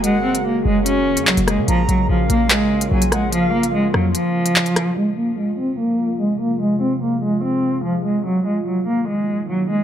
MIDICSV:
0, 0, Header, 1, 6, 480
1, 0, Start_track
1, 0, Tempo, 410959
1, 44, Time_signature, 4, 2, 24, 8
1, 11491, End_track
2, 0, Start_track
2, 0, Title_t, "Flute"
2, 0, Program_c, 0, 73
2, 46, Note_on_c, 0, 78, 102
2, 496, Note_off_c, 0, 78, 0
2, 1961, Note_on_c, 0, 82, 103
2, 2414, Note_off_c, 0, 82, 0
2, 2448, Note_on_c, 0, 77, 83
2, 3359, Note_off_c, 0, 77, 0
2, 3412, Note_on_c, 0, 80, 78
2, 3636, Note_off_c, 0, 80, 0
2, 3644, Note_on_c, 0, 78, 77
2, 3872, Note_off_c, 0, 78, 0
2, 3881, Note_on_c, 0, 77, 97
2, 4333, Note_off_c, 0, 77, 0
2, 11491, End_track
3, 0, Start_track
3, 0, Title_t, "Ambient pad"
3, 0, Program_c, 1, 92
3, 0, Note_on_c, 1, 49, 90
3, 0, Note_on_c, 1, 56, 81
3, 0, Note_on_c, 1, 58, 80
3, 0, Note_on_c, 1, 66, 96
3, 1926, Note_off_c, 1, 56, 0
3, 1926, Note_off_c, 1, 66, 0
3, 1964, Note_on_c, 1, 53, 80
3, 1965, Note_on_c, 1, 65, 99
3, 5757, Note_off_c, 1, 49, 0
3, 5758, Note_off_c, 1, 58, 0
3, 5766, Note_off_c, 1, 53, 0
3, 5766, Note_off_c, 1, 65, 0
3, 5804, Note_on_c, 1, 48, 88
3, 5804, Note_on_c, 1, 53, 79
3, 5804, Note_on_c, 1, 56, 80
3, 5804, Note_on_c, 1, 65, 92
3, 9606, Note_off_c, 1, 48, 0
3, 9606, Note_off_c, 1, 53, 0
3, 9606, Note_off_c, 1, 56, 0
3, 9645, Note_on_c, 1, 51, 86
3, 9645, Note_on_c, 1, 54, 80
3, 9645, Note_on_c, 1, 58, 76
3, 11491, Note_off_c, 1, 51, 0
3, 11491, Note_off_c, 1, 54, 0
3, 11491, Note_off_c, 1, 58, 0
3, 11491, Note_off_c, 1, 65, 0
3, 11491, End_track
4, 0, Start_track
4, 0, Title_t, "Cello"
4, 0, Program_c, 2, 42
4, 44, Note_on_c, 2, 56, 106
4, 238, Note_off_c, 2, 56, 0
4, 285, Note_on_c, 2, 60, 78
4, 479, Note_off_c, 2, 60, 0
4, 525, Note_on_c, 2, 58, 75
4, 719, Note_off_c, 2, 58, 0
4, 764, Note_on_c, 2, 56, 93
4, 959, Note_off_c, 2, 56, 0
4, 1004, Note_on_c, 2, 61, 98
4, 1455, Note_off_c, 2, 61, 0
4, 1484, Note_on_c, 2, 54, 86
4, 1679, Note_off_c, 2, 54, 0
4, 1725, Note_on_c, 2, 56, 84
4, 1919, Note_off_c, 2, 56, 0
4, 1965, Note_on_c, 2, 53, 99
4, 2159, Note_off_c, 2, 53, 0
4, 2204, Note_on_c, 2, 54, 86
4, 2398, Note_off_c, 2, 54, 0
4, 2445, Note_on_c, 2, 53, 86
4, 2639, Note_off_c, 2, 53, 0
4, 2685, Note_on_c, 2, 58, 92
4, 2879, Note_off_c, 2, 58, 0
4, 2925, Note_on_c, 2, 56, 93
4, 3376, Note_off_c, 2, 56, 0
4, 3405, Note_on_c, 2, 54, 82
4, 3599, Note_off_c, 2, 54, 0
4, 3645, Note_on_c, 2, 56, 81
4, 3839, Note_off_c, 2, 56, 0
4, 3884, Note_on_c, 2, 53, 104
4, 4079, Note_off_c, 2, 53, 0
4, 4125, Note_on_c, 2, 58, 89
4, 4319, Note_off_c, 2, 58, 0
4, 4364, Note_on_c, 2, 56, 88
4, 4559, Note_off_c, 2, 56, 0
4, 4604, Note_on_c, 2, 54, 81
4, 4799, Note_off_c, 2, 54, 0
4, 4843, Note_on_c, 2, 53, 101
4, 5757, Note_off_c, 2, 53, 0
4, 5803, Note_on_c, 2, 56, 94
4, 5998, Note_off_c, 2, 56, 0
4, 6044, Note_on_c, 2, 58, 81
4, 6239, Note_off_c, 2, 58, 0
4, 6284, Note_on_c, 2, 56, 75
4, 6478, Note_off_c, 2, 56, 0
4, 6524, Note_on_c, 2, 60, 86
4, 6718, Note_off_c, 2, 60, 0
4, 6764, Note_on_c, 2, 58, 87
4, 7215, Note_off_c, 2, 58, 0
4, 7244, Note_on_c, 2, 56, 83
4, 7438, Note_off_c, 2, 56, 0
4, 7483, Note_on_c, 2, 58, 81
4, 7678, Note_off_c, 2, 58, 0
4, 7724, Note_on_c, 2, 56, 94
4, 7918, Note_off_c, 2, 56, 0
4, 7964, Note_on_c, 2, 60, 75
4, 8159, Note_off_c, 2, 60, 0
4, 8203, Note_on_c, 2, 58, 69
4, 8398, Note_off_c, 2, 58, 0
4, 8444, Note_on_c, 2, 56, 83
4, 8639, Note_off_c, 2, 56, 0
4, 8685, Note_on_c, 2, 60, 92
4, 9136, Note_off_c, 2, 60, 0
4, 9165, Note_on_c, 2, 53, 82
4, 9359, Note_off_c, 2, 53, 0
4, 9405, Note_on_c, 2, 56, 80
4, 9599, Note_off_c, 2, 56, 0
4, 9644, Note_on_c, 2, 54, 96
4, 9839, Note_off_c, 2, 54, 0
4, 9884, Note_on_c, 2, 56, 77
4, 10079, Note_off_c, 2, 56, 0
4, 10124, Note_on_c, 2, 54, 81
4, 10318, Note_off_c, 2, 54, 0
4, 10364, Note_on_c, 2, 58, 87
4, 10559, Note_off_c, 2, 58, 0
4, 10604, Note_on_c, 2, 56, 82
4, 11055, Note_off_c, 2, 56, 0
4, 11084, Note_on_c, 2, 54, 83
4, 11279, Note_off_c, 2, 54, 0
4, 11326, Note_on_c, 2, 56, 83
4, 11491, Note_off_c, 2, 56, 0
4, 11491, End_track
5, 0, Start_track
5, 0, Title_t, "808-style bass"
5, 0, Program_c, 3, 38
5, 0, Note_on_c, 3, 30, 109
5, 164, Note_on_c, 3, 32, 98
5, 182, Note_off_c, 3, 30, 0
5, 463, Note_on_c, 3, 30, 98
5, 481, Note_off_c, 3, 32, 0
5, 749, Note_off_c, 3, 30, 0
5, 763, Note_on_c, 3, 30, 108
5, 1364, Note_on_c, 3, 42, 104
5, 1382, Note_off_c, 3, 30, 0
5, 1483, Note_on_c, 3, 30, 104
5, 1501, Note_off_c, 3, 42, 0
5, 1598, Note_off_c, 3, 30, 0
5, 1604, Note_on_c, 3, 30, 108
5, 1844, Note_on_c, 3, 49, 96
5, 1861, Note_off_c, 3, 30, 0
5, 1958, Note_off_c, 3, 49, 0
5, 1963, Note_on_c, 3, 34, 116
5, 2194, Note_off_c, 3, 34, 0
5, 2203, Note_on_c, 3, 34, 104
5, 2434, Note_off_c, 3, 34, 0
5, 2444, Note_on_c, 3, 34, 109
5, 2674, Note_off_c, 3, 34, 0
5, 2683, Note_on_c, 3, 34, 109
5, 3375, Note_off_c, 3, 34, 0
5, 3404, Note_on_c, 3, 34, 112
5, 4557, Note_off_c, 3, 34, 0
5, 4603, Note_on_c, 3, 41, 105
5, 4834, Note_off_c, 3, 41, 0
5, 11491, End_track
6, 0, Start_track
6, 0, Title_t, "Drums"
6, 44, Note_on_c, 9, 42, 80
6, 161, Note_off_c, 9, 42, 0
6, 405, Note_on_c, 9, 42, 79
6, 522, Note_off_c, 9, 42, 0
6, 1004, Note_on_c, 9, 42, 84
6, 1121, Note_off_c, 9, 42, 0
6, 1365, Note_on_c, 9, 42, 95
6, 1482, Note_off_c, 9, 42, 0
6, 1485, Note_on_c, 9, 39, 108
6, 1601, Note_off_c, 9, 39, 0
6, 1604, Note_on_c, 9, 42, 86
6, 1721, Note_off_c, 9, 42, 0
6, 1724, Note_on_c, 9, 37, 94
6, 1726, Note_on_c, 9, 42, 74
6, 1840, Note_off_c, 9, 37, 0
6, 1843, Note_off_c, 9, 42, 0
6, 1964, Note_on_c, 9, 42, 79
6, 2080, Note_off_c, 9, 42, 0
6, 2205, Note_on_c, 9, 42, 69
6, 2322, Note_off_c, 9, 42, 0
6, 2684, Note_on_c, 9, 42, 81
6, 2801, Note_off_c, 9, 42, 0
6, 2923, Note_on_c, 9, 39, 121
6, 2923, Note_on_c, 9, 42, 85
6, 3039, Note_off_c, 9, 39, 0
6, 3040, Note_off_c, 9, 42, 0
6, 3285, Note_on_c, 9, 42, 93
6, 3402, Note_off_c, 9, 42, 0
6, 3524, Note_on_c, 9, 42, 90
6, 3641, Note_off_c, 9, 42, 0
6, 3643, Note_on_c, 9, 37, 94
6, 3646, Note_on_c, 9, 42, 75
6, 3760, Note_off_c, 9, 37, 0
6, 3763, Note_off_c, 9, 42, 0
6, 3884, Note_on_c, 9, 42, 78
6, 4000, Note_off_c, 9, 42, 0
6, 4244, Note_on_c, 9, 42, 78
6, 4361, Note_off_c, 9, 42, 0
6, 4604, Note_on_c, 9, 37, 86
6, 4720, Note_off_c, 9, 37, 0
6, 4843, Note_on_c, 9, 42, 82
6, 4960, Note_off_c, 9, 42, 0
6, 5205, Note_on_c, 9, 42, 95
6, 5322, Note_off_c, 9, 42, 0
6, 5324, Note_on_c, 9, 39, 107
6, 5441, Note_off_c, 9, 39, 0
6, 5444, Note_on_c, 9, 42, 52
6, 5560, Note_off_c, 9, 42, 0
6, 5563, Note_on_c, 9, 37, 94
6, 5564, Note_on_c, 9, 42, 88
6, 5680, Note_off_c, 9, 37, 0
6, 5680, Note_off_c, 9, 42, 0
6, 11491, End_track
0, 0, End_of_file